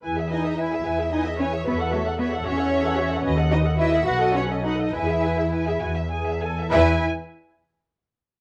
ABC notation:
X:1
M:6/8
L:1/16
Q:3/8=71
K:E
V:1 name="Violin section"
g e g e g e g e g e g e | e f e f e f e f e f e f | d f d f d f f d f d f d | g e g e g e g e g e g e |
g2 z8 z2 |]
V:2 name="Violin section"
z2 d2 e4 d2 c2 | B2 A2 B2 c6 | z2 d2 e2 f2 c2 d2 | e6 z6 |
e2 z8 z2 |]
V:3 name="Viola section"
[EB] G [EB] G [EB] G [EB] G [EB] G [EB] G | [Fc] [Ae] [Fc] [Ae] [Fc] [Ae] [Fc] [Ae] [Fc] [Ae] [Fc] [Ae] | [FB] [Ad] [FB] [Ad] [FB] [Ad] [FB] A [FB] A [FB] A | [EB] G [EB] G [EB] G F2 G2 A2 |
[EB]2 z8 z2 |]
V:4 name="Cello section"
z2 D2 E4 D2 C2 | B,2 A,2 B,2 C6 | z2 D2 E2 F2 C2 D2 | E6 z6 |
E2 z8 z2 |]
V:5 name="Double bass section" clef=bass
E,,6 E,,6 | E,,6 E,,6 | D,,6 B,,,6 | E,,6 E,,6 |
E,,2 z8 z2 |]